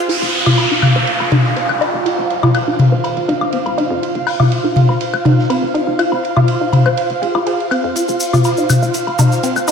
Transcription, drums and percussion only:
0.09 ride medium
0.22 ride soft
0.33 closed hi-hat medium
0.33 open hi-hat medium
0.46 mid tom medium
0.46 high woodblock medium
0.58 ride medium
0.58 low woodblock soft
0.82 closed hi-hat medium
0.82 mid tom medium
0.82 ride medium
0.82 high woodblock medium
1.07 ride medium
1.20 ride soft
1.20 low woodblock soft
1.32 mid tom medium
1.32 ride medium
1.45 snare soft
1.56 ride medium
1.69 high woodblock medium
1.81 ride medium
1.81 low woodblock soft
2.06 ride medium
2.30 closed hi-hat medium
2.30 ride medium
2.43 mid tom medium
2.43 high woodblock medium
2.43 low woodblock soft
2.54 ride medium
2.54 high woodblock medium
2.79 closed hi-hat medium
2.79 mid tom medium
2.79 ride medium
3.04 ride medium
3.04 low woodblock soft
3.17 ride soft
3.28 closed hi-hat medium
3.28 ride medium
3.41 high woodblock medium
3.52 ride medium
3.66 ride soft
3.66 low woodblock soft
3.78 closed hi-hat medium
3.78 ride medium
4.03 ride medium
4.15 ride soft
4.27 closed hi-hat medium
4.27 open hi-hat medium
4.27 high woodblock medium
4.27 low woodblock soft
4.40 mid tom medium
4.40 high woodblock medium
4.52 ride medium
4.76 closed hi-hat medium
4.76 mid tom medium
4.76 ride medium
4.89 low woodblock soft
5.00 ride medium
5.13 ride soft
5.13 high woodblock medium
5.25 closed hi-hat medium
5.25 mid tom medium
5.25 ride medium
5.39 snare soft
5.50 ride medium
5.50 low woodblock soft
5.74 closed hi-hat medium
5.74 ride medium
5.99 ride medium
5.99 high woodblock medium
6.12 low woodblock soft
6.24 closed hi-hat medium
6.24 ride medium
6.37 mid tom medium
6.37 high woodblock medium
6.48 ride medium
6.73 closed hi-hat medium
6.73 mid tom medium
6.73 ride medium
6.73 low woodblock soft
6.86 high woodblock medium
6.97 ride medium
7.10 ride soft
7.22 closed hi-hat medium
7.22 ride medium
7.35 high woodblock medium
7.35 low woodblock soft
7.46 ride medium
7.60 ride soft
7.71 closed hi-hat medium
7.71 ride medium
7.71 high woodblock medium
7.96 ride medium
7.96 shaker medium
8.08 ride soft
8.08 shaker soft
8.20 closed hi-hat medium
8.20 open hi-hat medium
8.20 shaker medium
8.33 mid tom medium
8.33 high woodblock medium
8.33 shaker soft
8.44 ride medium
8.44 low woodblock soft
8.44 shaker soft
8.57 shaker soft
8.69 closed hi-hat medium
8.69 mid tom medium
8.69 ride medium
8.69 high woodblock medium
8.69 shaker medium
8.83 shaker soft
8.94 ride medium
8.94 shaker medium
9.07 ride soft
9.07 low woodblock soft
9.18 closed hi-hat medium
9.18 mid tom medium
9.18 ride medium
9.18 shaker medium
9.32 snare soft
9.32 shaker soft
9.43 ride medium
9.43 shaker soft
9.56 high woodblock medium
9.56 shaker soft
9.68 closed hi-hat medium
9.68 ride medium
9.68 low woodblock soft
9.68 shaker medium

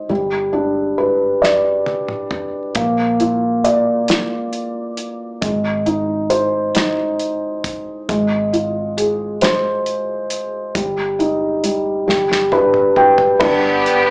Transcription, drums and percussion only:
1.44 snare soft
1.86 high tom medium
2.08 mid tom medium
2.31 mid tom medium
2.75 kick loud
2.75 closed hi-hat medium
3.20 closed hi-hat soft
3.65 closed hi-hat medium
4.08 snare medium
4.08 closed hi-hat medium
4.53 closed hi-hat soft
4.97 closed hi-hat medium
5.42 kick loud
5.42 closed hi-hat medium
5.86 closed hi-hat soft
6.30 closed hi-hat medium
6.75 snare medium
6.75 closed hi-hat medium
7.19 closed hi-hat soft
7.64 kick medium
7.64 closed hi-hat medium
8.09 kick loud
8.09 closed hi-hat medium
8.54 closed hi-hat soft
8.98 closed hi-hat medium
9.41 snare medium
9.41 closed hi-hat medium
9.86 closed hi-hat soft
10.30 closed hi-hat medium
10.75 kick loud
10.75 closed hi-hat medium
11.20 closed hi-hat soft
11.64 closed hi-hat medium
12.09 snare soft
12.32 snare soft
12.52 high tom medium
12.74 mid tom medium
12.96 mid tom medium
13.18 floor tom medium
13.40 kick loud
13.40 crash medium
13.86 closed hi-hat soft

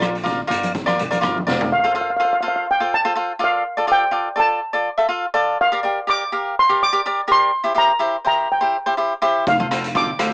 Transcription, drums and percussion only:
0.02 cross-stick medium
0.02 closed hi-hat medium
0.02 high conga medium
0.15 closed hi-hat medium
0.26 kick medium
0.26 closed hi-hat medium
0.50 closed hi-hat medium
0.50 low conga medium
0.63 closed hi-hat medium
0.63 high conga medium
0.75 kick loud
0.75 closed hi-hat medium
0.87 cross-stick medium
0.87 high conga medium
0.99 closed hi-hat medium
0.99 low conga medium
1.12 closed hi-hat medium
1.12 high conga medium
1.23 kick medium
1.23 cross-stick medium
1.23 closed hi-hat medium
1.38 high conga medium
1.48 snare medium
1.48 low conga medium
1.60 floor tom medium
1.60 low conga medium
9.47 kick loud
9.47 closed hi-hat medium
9.60 high conga medium
9.71 cross-stick medium
9.71 closed hi-hat medium
9.84 closed hi-hat medium
9.95 kick medium
9.95 closed hi-hat medium
10.19 cross-stick medium
10.19 closed hi-hat medium

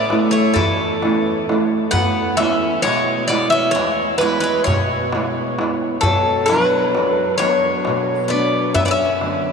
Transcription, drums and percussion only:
0.10 darbuka tek medium
0.56 darbuka dum medium
1.02 darbuka tek medium
1.26 darbuka tek soft
1.49 darbuka tek medium
1.93 darbuka dum medium
2.40 darbuka tek medium
2.62 darbuka tek soft
2.84 darbuka tek medium
3.30 darbuka tek medium
3.76 darbuka tek medium
4.21 darbuka tek medium
4.67 darbuka dum medium
5.12 darbuka tek medium
5.36 darbuka tek soft
5.59 darbuka tek medium
6.03 darbuka dum medium
6.49 darbuka tek medium
6.72 darbuka tek soft
6.95 darbuka tek medium
7.40 darbuka tek medium
7.85 darbuka tek medium
8.75 darbuka dum medium
9.21 darbuka tek medium
9.44 darbuka tek soft

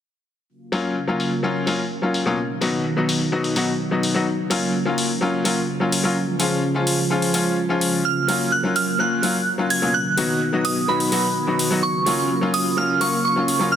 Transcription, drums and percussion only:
0.73 open hi-hat loud
1.20 open hi-hat medium
1.67 open hi-hat medium
2.14 open hi-hat loud
2.62 open hi-hat loud
3.09 open hi-hat loud
3.44 open hi-hat medium
3.56 open hi-hat loud
4.03 open hi-hat loud
4.51 open hi-hat loud
4.98 open hi-hat loud
5.45 open hi-hat loud
5.92 open hi-hat loud
6.40 open hi-hat loud
6.87 open hi-hat loud
7.22 open hi-hat medium
7.34 open hi-hat loud
7.81 open hi-hat loud
8.29 open hi-hat loud
8.76 open hi-hat medium
9.23 open hi-hat medium
9.70 open hi-hat loud
10.18 open hi-hat loud
10.65 open hi-hat loud
11.00 open hi-hat medium
11.12 open hi-hat loud
11.59 open hi-hat medium
12.06 open hi-hat medium
12.54 open hi-hat medium
13.01 open hi-hat medium
13.48 open hi-hat medium

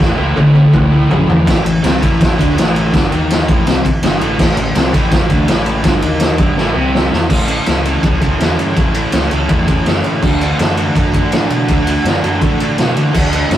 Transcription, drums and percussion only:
0.01 snare medium
0.37 high tom medium
0.55 high tom medium
0.74 kick loud
0.74 mid tom medium
1.11 floor tom loud
1.29 floor tom medium
1.47 kick loud
1.47 snare loud
1.47 ride loud
1.66 ride medium
1.84 snare loud
1.84 ride loud
2.02 kick medium
2.02 ride medium
2.21 kick loud
2.21 snare loud
2.21 ride loud
2.39 kick medium
2.39 ride medium
2.58 snare loud
2.58 ride loud
2.76 ride medium
2.94 kick loud
2.94 snare loud
2.94 ride medium
3.12 ride medium
3.30 snare loud
3.30 ride loud
3.48 kick loud
3.48 ride medium
3.67 snare loud
3.67 ride medium
3.85 kick medium
3.85 ride medium
4.03 snare loud
4.03 ride loud
4.21 ride medium
4.39 kick loud
4.39 snare loud
4.39 crash medium
4.57 ride medium
4.75 snare loud
4.75 ride loud
4.94 kick medium
4.94 ride medium
5.11 kick loud
5.11 snare loud
5.11 ride loud
5.30 kick medium
5.30 ride medium
5.48 snare loud
5.48 ride loud
5.66 ride medium
5.84 kick loud
5.84 snare loud
5.84 ride loud
6.02 ride medium
6.20 snare loud
6.20 ride loud
6.38 kick loud
6.38 ride medium
6.58 snare medium
6.95 snare medium
7.13 snare medium
7.30 kick loud
7.30 crash loud
7.48 ride medium
7.66 snare loud
7.66 ride loud
7.85 ride medium
8.03 kick loud
8.03 ride loud
8.21 kick medium
8.21 ride medium
8.40 snare loud
8.40 ride loud
8.59 ride medium
8.77 kick loud
8.77 ride medium
8.94 ride medium
9.12 snare loud
9.12 ride loud
9.31 ride medium
9.49 kick loud
9.49 ride medium
9.68 kick medium
9.68 ride medium
9.86 snare loud
9.86 ride medium
10.04 ride medium
10.23 kick loud
10.23 crash medium
10.41 ride medium
10.59 snare loud
10.59 ride loud
10.77 ride medium
10.96 kick loud
10.96 ride loud
11.14 kick medium
11.14 ride medium
11.32 snare loud
11.32 ride loud
11.50 ride medium
11.68 kick loud
11.68 ride loud
11.87 ride medium
12.05 snare loud
12.05 ride loud
12.24 ride medium
12.41 kick loud
12.41 ride medium
12.60 ride medium
12.78 snare loud
12.78 ride medium
12.97 ride medium
13.15 kick loud
13.15 crash loud
13.33 ride medium
13.51 snare loud
13.51 ride loud

